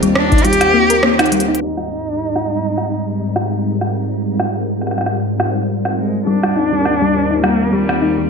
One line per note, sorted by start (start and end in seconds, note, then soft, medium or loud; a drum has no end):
0.00 1.61 D#2 medium
0.00 0.11 G3 loud
0.00 1.61 C4 medium
0.00 1.61 F4 medium
0.00 1.61 G4 medium
0.00 1.61 A#4 medium
0.00 closed hi-hat medium
0.15 0.46 D4 loud
0.15 cross-stick loud
0.32 0.44 D#4 medium
0.32 kick loud
0.32 closed hi-hat soft
0.38 closed hi-hat soft
0.45 0.60 G3 medium
0.45 1.32 G4 loud
0.45 closed hi-hat soft
0.53 closed hi-hat medium
0.61 cross-stick medium
0.61 closed hi-hat medium
0.74 0.84 A#3 medium
0.90 0.98 A#4 medium
0.90 closed hi-hat medium
1.03 1.09 A#3 medium
1.03 cross-stick loud
1.19 1.27 D#4 loud
1.19 cross-stick medium
1.19 closed hi-hat soft
1.26 closed hi-hat soft
1.32 1.42 G3 medium
1.32 closed hi-hat medium
1.40 closed hi-hat medium
1.48 1.56 D#4 medium
1.55 closed hi-hat medium
1.61 6.27 G#2 medium
1.61 3.61 D#4 loud
1.67 8.30 G3 medium
1.77 cross-stick medium
2.09 8.30 C4 medium
2.36 cross-stick medium
2.78 cross-stick medium
2.93 8.30 A#4 medium
3.13 8.30 F4 medium
3.36 cross-stick medium
3.81 cross-stick medium
4.40 cross-stick medium
4.81 cross-stick soft
4.87 cross-stick soft
4.91 cross-stick soft
4.98 cross-stick soft
5.01 cross-stick soft
5.06 cross-stick soft
5.40 cross-stick medium
5.85 cross-stick soft
5.98 6.25 G#3 medium
6.27 8.30 D#2 medium
6.27 6.37 G3 medium
6.27 7.40 D4 loud
6.43 6.55 G3 medium
6.43 cross-stick medium
6.56 6.71 D#4 medium
6.73 6.84 G3 medium
6.85 cross-stick soft
7.02 7.10 G3 loud
7.14 7.30 G3 medium
7.31 7.43 D#4 medium
7.44 7.59 G3 medium
7.44 7.74 A#3 loud
7.44 cross-stick medium
7.73 7.83 G3 loud
7.73 8.30 G3 loud
7.89 8.01 G3 medium
7.89 cross-stick medium
8.02 8.17 D#4 medium
8.18 8.30 G3 medium